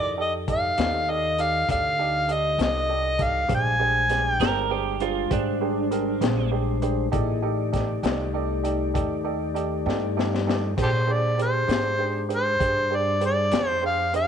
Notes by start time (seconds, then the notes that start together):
Already playing: F2 E4 G#4 A#4 D#5
0.00 D5
0.15 D#4 G4 A4 D5 D#5
0.21 D#5
0.48 D#4 G4 A4 D5 F5, kick, closed hi-hat
0.78 D#2 D#4 G4 A4 D5, snare, closed hi-hat
1.09 D#4 G4 A4 D5 D#5
1.38 D#4 G4 A4 D5 F5, closed hi-hat
1.68 D2 D#4 G4 A4 D5 F5, kick, closed hi-hat
1.99 D#4 G4 A4 D5
2.28 D#4 G4 A4 D5, closed hi-hat
2.33 D#5
2.58 C2 D#4 G4 A4 D5, snare, closed hi-hat
2.63 D#5
2.89 D#4 G4 A4 D5
3.18 D#4 G4 A4 D5, kick, closed hi-hat
3.23 F5
3.48 A#1 G3 G#3 D4 G4 G#4 C5, kick, closed hi-hat
3.55 G#5
3.79 D4 G4 G#4 C5
4.09 D4 G4 G#4 C5, snare, closed hi-hat
4.30 G5
4.40 G1 D4 G4 G#4 A#4 C5, snare, closed hi-hat
4.70 D4 G4 G#4 C5
5.00 D4 F4 G4 G#4 C5, closed hi-hat
5.30 G#1 D4 G4 G#4 C5, kick, closed hi-hat
5.61 D4 G4 G#4 C5
5.91 D4 G4 G#4 A#4, closed hi-hat
6.21 A#1 D4 G4 G#4 C5, snare, closed hi-hat
6.51 D4 G4 G#4 C5
6.82 D4 G4 G#4 C5, closed hi-hat
7.12 A1 A#3 D#4 E4 G4 G#4 A4 D5 D#5, kick, closed hi-hat
7.42 A3 D#4 G4 A4 D5
7.72 D#4 G4 A4 D5, kick, snare, closed hi-hat
8.03 C2 D#4 G4 A4 D5, snare, closed hi-hat
8.33 D#4 G4 A4 D5
8.63 D#4 G4 A4 D5, closed hi-hat
8.94 D#2 D#4 G4 A4 D5, kick, closed hi-hat
9.24 D#4 G4 A4 D5
9.54 D#4 G4 A4 D5, closed hi-hat
9.85 G2 D#4 G4 A4 D5, snare
10.17 D#4 G4 A4 D5, snare
10.35 snare
10.47 D#4 G4 A4 D5, snare
10.77 A#2 D4 G4 G#4 C5, kick, closed hi-hat, crash
10.82 G4 A4 C5
11.07 D4 G4 G#4 C5
11.12 D5
11.38 D4 G4 G#4 C5, closed hi-hat
11.42 C5
11.67 G#2 D4 G4 G#4 C5, snare, closed hi-hat
11.98 D4 G4 G#4 C5
12.29 D4 G4 G#4 C5, closed hi-hat
12.34 C5
12.60 G2 D4 G4 G#4 C5, kick, closed hi-hat
12.90 D4 G4 G#4 C5
12.95 D5
13.20 D4 G4 G#4 C5, closed hi-hat
13.26 D5
13.51 F2 D4 G4 G#4 C5, snare, closed hi-hat
13.68 C5
13.82 D4 G4 G#4 C5 F5
14.13 D4 G4 G#4 C5 F5, closed hi-hat